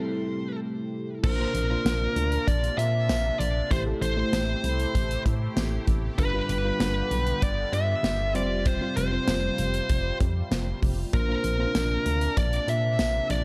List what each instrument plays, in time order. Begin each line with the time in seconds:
Already playing: fm electric piano A2 G3 C4 E4 A4, analog synth pad C3 A3 E4 G4
1.23 fm bass A#1, fm electric piano A#2 A#3 D4 F4 C5, analog synth pad C3 A#3 D4 F4, lead electric guitar A#4, kick, crash
1.39 fm electric piano A#3 D4 F4 C5
1.54 fm bass A#1, closed hi-hat
1.70 fm electric piano A#3 D4 F4 C5
1.85 fm bass A#1, snare, closed hi-hat, tambourine
2.16 fm bass D2, closed hi-hat
2.32 closed hi-hat
2.47 fm bass A#1, lead electric guitar D5, kick, closed hi-hat
2.64 closed hi-hat
2.78 fm bass A#2, lead electric guitar E5, closed hi-hat
3.09 fm bass A#1, snare, closed hi-hat, tambourine
3.40 fm bass A#1, lead electric guitar D5, closed hi-hat
3.70 fm bass A1, fm electric piano A2 A3 E4 G4 C5, analog synth pad A3 E4 G4, lead electric guitar C5, kick, closed hi-hat
3.85 fm electric piano A3 E4 G4 A4
4.01 fm bass A1, lead electric guitar C5, closed hi-hat
4.17 fm electric piano A3 E4 G4 C5
4.33 fm bass A1, snare, closed hi-hat, tambourine
4.64 fm bass C2, closed hi-hat
4.80 closed hi-hat
4.95 fm bass A1, kick, closed hi-hat
5.11 closed hi-hat
5.26 fm bass A2, kick, closed hi-hat
5.57 fm bass A1, snare, closed hi-hat, tambourine
5.87 fm bass A1, kick, closed hi-hat
6.18 fm bass G1, fm electric piano G2 G3 D4 F4 B4, analog synth pad D3 B3 F4, lead electric guitar B4, kick, closed hi-hat
6.33 fm electric piano G3 D4 F4 B4
6.49 fm bass G1, closed hi-hat
6.64 fm electric piano G3 D4 F4 B4
6.80 fm bass G1, snare, closed hi-hat, tambourine
7.11 fm bass B1, closed hi-hat
7.27 closed hi-hat
7.42 fm bass G1, lead electric guitar D5, kick, closed hi-hat
7.72 fm bass G2, lead electric guitar E5, closed hi-hat
8.03 fm bass G1, snare, closed hi-hat, tambourine
8.34 fm bass F1, analog synth pad C3 G3, fm electric piano G3 C4 F4 C5, lead electric guitar D5, closed hi-hat
8.66 lead electric guitar C5, kick, closed hi-hat
8.81 fm electric piano G3 C4 F4 C5
8.97 fm bass F1, lead electric guitar C5, closed hi-hat
9.12 fm electric piano G3 C4 F4 C5
9.28 fm bass F1, snare, closed hi-hat, tambourine
9.58 fm bass F1, closed hi-hat
9.74 closed hi-hat
9.89 fm bass F1, kick, closed hi-hat
10.20 fm bass F2, kick, closed hi-hat
10.51 fm bass F1, snare, closed hi-hat, tambourine
10.82 fm bass F1, kick, open hi-hat
11.13 fm bass A#1, fm electric piano A#2 A#3 D4 F4 C5, analog synth pad C3 A#3 D4, lead electric guitar A#4, kick, closed hi-hat
11.28 fm electric piano A#3 D4 F4 C5
11.44 fm bass A#1, closed hi-hat
11.59 fm electric piano A#3 C4 F4 C5
11.66 fm electric piano D4
11.75 fm bass A#1, snare, closed hi-hat, tambourine
12.06 fm bass D2, closed hi-hat
12.21 closed hi-hat
12.37 fm bass A#1, lead electric guitar D5, kick, closed hi-hat
12.53 closed hi-hat
12.68 fm bass A#2, lead electric guitar E5, closed hi-hat
12.99 fm bass A#1, snare, closed hi-hat, tambourine
13.30 fm bass A#1, lead electric guitar D5, closed hi-hat